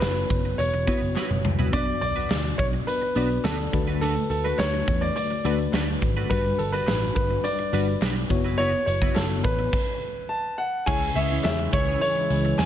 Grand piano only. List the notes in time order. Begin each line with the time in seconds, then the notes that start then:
Already playing: B4
0.58 C#5
1.73 D5
2.01 D5
2.58 C#5
2.87 B4
3.44 A4
4.01 A4
4.30 A4
4.44 B4
4.58 C#5
5.01 D5
5.16 D5
6.30 B4
6.58 A4
6.72 B4
7.15 B4
7.44 D5
8.58 C#5
8.86 C#5
9.15 A4
9.44 B4
10.29 A5
10.58 F#5
10.86 G#5
11.16 E5
11.44 E5
11.73 C#5
12.01 C#5
12.58 G#5